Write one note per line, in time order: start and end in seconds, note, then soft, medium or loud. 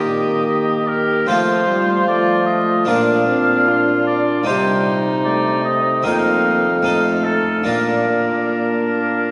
0.00 1.26 D#3 soft
0.00 1.28 D#3 medium
0.00 1.29 A#3 medium
0.00 1.24 D#4 soft
0.00 0.48 G4 medium
0.00 1.25 G4 soft
0.00 1.25 A#4 soft
0.00 0.89 D#5 medium
0.49 0.88 G4 medium
0.88 1.30 G4 medium
0.88 1.29 A#4 medium
1.27 2.90 F3 medium
1.27 2.85 F3 medium
1.27 1.71 A3 medium
1.27 2.83 C4 soft
1.27 2.84 F4 soft
1.27 2.89 F4 medium
1.27 2.84 A4 soft
1.27 2.07 C5 medium
1.69 2.11 G3 medium
2.08 2.89 A3 medium
2.08 2.46 D5 medium
2.46 2.86 D#5 medium
2.85 4.46 A#2 medium
2.85 4.43 A#2 medium
2.85 3.30 A#3 medium
2.85 4.42 D4 soft
2.85 3.69 D4 medium
2.85 4.42 F4 soft
2.85 4.43 A#4 soft
2.85 4.04 F5 medium
3.28 3.67 C4 medium
3.68 4.46 D4 medium
3.68 4.47 F4 medium
4.07 4.46 D5 medium
4.44 6.07 C3 medium
4.44 6.03 C3 soft
4.44 5.29 G3 medium
4.44 6.01 C4 soft
4.44 6.01 D#4 soft
4.44 6.02 G4 soft
4.44 4.98 C5 medium
4.48 6.03 D#4 medium
5.25 6.08 A3 medium
5.25 5.63 D5 medium
5.65 6.06 D#5 medium
6.03 7.48 F2 medium
6.03 7.63 F2 soft
6.03 6.69 A#3 medium
6.03 6.82 C4 soft
6.03 6.82 D#4 soft
6.03 6.84 D#4 medium
6.03 6.83 A#4 soft
6.03 6.13 F5 medium
6.12 6.20 G5 medium
6.19 7.26 F5 medium
6.83 7.68 A3 medium
6.83 7.63 C4 soft
6.83 7.63 D#4 soft
6.83 7.64 A4 soft
6.88 7.66 D#4 soft
7.25 7.65 A4 medium
7.64 9.31 A#2 medium
7.64 9.31 A#2 soft
7.64 9.31 A#3 soft
7.64 9.31 A#3 medium
7.64 9.31 D4 soft
7.64 9.31 D4 medium
7.64 9.31 F4 soft
7.64 9.31 A#4 medium